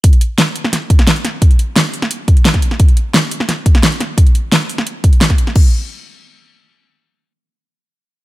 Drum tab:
CC |----------------|----------------|----------------|----------------|
HH |xxx-x-x-x-xxxxx-|xxx-x-o-x-xxxxx-|xxx-x-x-x-xxxxx-|xxx-x-o-x-xxxxx-|
SD |----o--oo--oo-o-|----o--o----oo-o|----o--oo--oo-o-|----o--o----oo-o|
BD |o---------o-----|o---------o--o--|o---------o-----|o---------o--o--|

CC |x---------------|----------------|
HH |----------------|----------------|
SD |----------------|----------------|
BD |o---------------|----------------|